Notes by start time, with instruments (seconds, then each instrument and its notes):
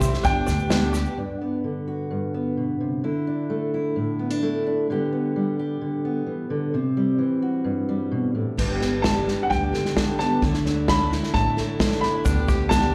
Already playing: felt piano C2 C3, five-string banjo E4 G4, upright piano E5
0.00 twelve-string acoustic guitar E3 G3 E4, felt piano C4 E4 G4 E5, five-string banjo C5, kick, snare, shaker
0.04 twelve-string acoustic guitar G4
0.12 twelve-string acoustic guitar G3 E4 G4, snare
0.23 felt piano G1 G2 B3 D4 G4 D5, upright bass G1, twelve-string acoustic guitar G2 D3 G3 B3 D4 G4, five-string banjo D4, upright piano G5, kick, snare, shaker
0.36 twelve-string acoustic guitar G3 B3 D4 G4
0.47 upright bass D2, five-string banjo D5, snare, shaker
0.59 twelve-string acoustic guitar G3 B3 D4 G4, shaker
0.69 twelve-string acoustic guitar G2 D3 G3 B3 D4 G4, felt piano B3 D4 G4 D5, five-string banjo D4, snare, shaker
0.93 twelve-string acoustic guitar G3 B3 D4 G4, five-string banjo G4, snare, shaker
1.05 twelve-string acoustic guitar G3 B3 D4 G4, shaker
1.17 steel-string acoustic guitar G2 D4
1.41 steel-string acoustic guitar B3
1.64 steel-string acoustic guitar D3
1.88 steel-string acoustic guitar F#4
2.11 steel-string acoustic guitar G2
2.34 steel-string acoustic guitar B3
2.57 steel-string acoustic guitar B2
2.80 steel-string acoustic guitar C3
3.04 steel-string acoustic guitar D3 E4
3.27 steel-string acoustic guitar D4
3.50 steel-string acoustic guitar A3
3.74 steel-string acoustic guitar E4
3.96 steel-string acoustic guitar A2
4.19 steel-string acoustic guitar B3
4.30 steel-string acoustic guitar D4
4.42 steel-string acoustic guitar A3 E4
4.66 steel-string acoustic guitar D4
4.90 steel-string acoustic guitar D3 G3 B3 G4
5.12 steel-string acoustic guitar B3
5.36 steel-string acoustic guitar G3
5.59 steel-string acoustic guitar G4
5.81 steel-string acoustic guitar D3
6.05 steel-string acoustic guitar B3
6.27 steel-string acoustic guitar E3
6.50 steel-string acoustic guitar D3
6.74 steel-string acoustic guitar C3 C4
6.97 steel-string acoustic guitar G3
7.19 steel-string acoustic guitar E3
7.42 steel-string acoustic guitar F#4
7.64 steel-string acoustic guitar G2
7.89 steel-string acoustic guitar G3
8.12 steel-string acoustic guitar B2
8.35 steel-string acoustic guitar A2
8.57 upright bass G1, twelve-string acoustic guitar G2 D3 G3 B3 D4 G4, steel-string acoustic guitar G2, kick, snare, crash
8.69 twelve-string acoustic guitar G3 B3 D4 G4
8.81 twelve-string acoustic guitar G3 B3 D4 G4, steel-string acoustic guitar B3, snare
9.02 twelve-string acoustic guitar G2 D3 G3 B3 D4 G4, steel-string acoustic guitar D4, upright piano A5, kick, snare
9.26 twelve-string acoustic guitar G3 B3 D4 G4, steel-string acoustic guitar G4, snare
9.43 upright piano F#5
9.50 upright bass D2, steel-string acoustic guitar G2, upright piano G5, kick, snare
9.61 twelve-string acoustic guitar G3 B3 D4 G4
9.72 steel-string acoustic guitar D3, twelve-string acoustic guitar G3 B3 D4 G4, snare
9.85 snare
9.95 twelve-string acoustic guitar G2 D3 G3 B3 D4 G4, steel-string acoustic guitar D4, kick, snare
10.19 twelve-string acoustic guitar G3 B3 D4 G4, steel-string acoustic guitar B3, upright piano A5, snare
10.30 twelve-string acoustic guitar G3 B3 D4 G4
10.42 upright bass D2, twelve-string acoustic guitar D3 F#3 A3 D4 E4, steel-string acoustic guitar D3, kick, snare
10.52 twelve-string acoustic guitar A3 D4 E4, snare
10.65 twelve-string acoustic guitar F#3 A3 D4 E4, steel-string acoustic guitar D4, snare
10.88 twelve-string acoustic guitar D3 F#3 A3 D4 E4, steel-string acoustic guitar E4, upright piano B5, kick, snare
11.10 twelve-string acoustic guitar F#3 A3 D4 E4, steel-string acoustic guitar E4, snare
11.23 snare
11.34 upright bass A1, steel-string acoustic guitar A2, upright piano A5, kick, snare
11.46 twelve-string acoustic guitar A3 D4 E4
11.57 twelve-string acoustic guitar F#3 A3 D4 E4, steel-string acoustic guitar A3, snare
11.79 twelve-string acoustic guitar D3 F#3 A3 D4 E4, steel-string acoustic guitar E4, kick, snare
11.92 snare
12.01 twelve-string acoustic guitar F#3 A3 D4, steel-string acoustic guitar D4, upright piano B5, snare
12.06 twelve-string acoustic guitar E4
12.14 twelve-string acoustic guitar A3 D4 E4
12.25 upright bass D2, felt piano D2 D3 B3 D4 G4 D5, twelve-string acoustic guitar D3 G3 B3 G4, five-string banjo D4, kick, snare, shaker
12.38 twelve-string acoustic guitar G3 B3 G4
12.48 twelve-string acoustic guitar D3 G3 B3 G4, five-string banjo G4, kick, snare, shaker
12.69 twelve-string acoustic guitar D3 G3, felt piano B3 D4 G4 D5, five-string banjo D4, upright piano A5, kick, snare, shaker
12.73 twelve-string acoustic guitar B3 G4